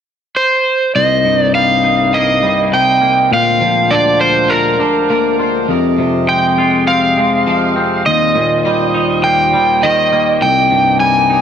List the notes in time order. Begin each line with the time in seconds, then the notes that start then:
0.36 C5
0.95 C2 C3 A#3 D#4 D#5
1.24 G2
1.40 D5
1.54 G3 F5
1.84 D#4
2.14 A#3 D#5
2.43 G3
2.72 C3 G5
3.01 A#3
3.31 D2 A#2 D3 G#3 F4 C5 F5
3.61 F3
3.91 D4 D5
4.20 A#4 C5
4.50 F4 A#4
4.79 D4
5.10 A#3
5.39 F4
5.68 F2 C3 G4 D#5
5.98 C3
6.28 G#3 G5
6.58 F4
6.87 C4 F5
7.17 G#3
7.47 F3
7.76 C4
8.06 D#2 A#2 G3 F4 C5 D#5
8.36 A#2
8.65 G3
8.94 D#4
9.24 A#3 G5
9.53 G3
9.83 D#3 D#5
10.12 A#3
10.42 C2 C3 A#3 D#4 D5 G5
10.71 G2
11.00 G3 G#5
11.30 D#4